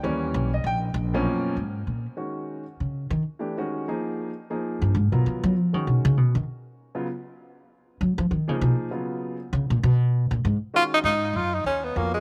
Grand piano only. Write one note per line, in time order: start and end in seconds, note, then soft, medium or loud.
0.03 0.49 E3 medium
0.03 0.49 G3 medium
0.03 0.49 A#3 medium
0.03 0.49 C#4 medium
0.54 0.65 D#5 medium
0.67 0.77 G5 loud
1.14 1.54 F#2 medium
1.14 1.54 B2 medium
1.14 1.54 F3 medium
1.14 1.54 A#3 medium
1.14 1.54 C#4 loud
2.17 2.63 D#3 medium
2.17 2.63 G#3 soft
2.17 2.63 C#4 soft
2.17 2.63 F#4 medium
3.39 3.57 E3 medium
3.39 3.57 A3 soft
3.39 3.57 D4 soft
3.39 3.57 G4 medium
3.58 3.85 D#3 medium
3.58 3.85 G#3 medium
3.58 3.85 C#4 medium
3.58 3.86 F#4 medium
3.88 4.29 F3 medium
3.88 4.29 A#3 medium
3.88 4.29 D#4 medium
3.88 4.29 G#4 medium
4.50 4.91 F3 medium
4.50 4.91 A#3 medium
4.50 4.91 D#4 medium
4.50 4.91 G#4 medium
5.12 5.52 F#3 medium
5.12 5.52 B3 medium
5.12 5.53 F4 medium
5.12 5.53 A#4 medium
5.73 6.13 D#3 medium
5.73 6.14 G#3 soft
5.73 6.14 C#4 soft
5.73 6.14 F#4 medium
6.95 7.06 C#3 medium
6.95 7.06 F#3 medium
6.95 7.06 B3 medium
6.95 7.06 F4 medium
8.48 8.88 F3 medium
8.48 8.88 A#3 medium
8.48 8.88 D#4 medium
8.48 8.88 G#4 medium
8.91 9.36 C#3 medium
8.91 9.36 F#3 medium
8.91 9.36 B3 medium
8.91 9.36 F4 medium
10.74 11.04 D#3 medium
10.74 11.04 G#3 medium
10.74 11.04 C#4 soft
10.74 11.04 F#4 medium
11.96 12.20 B3 soft
11.96 12.20 F4 soft
11.96 12.20 F#4 soft
11.96 12.20 A#4 medium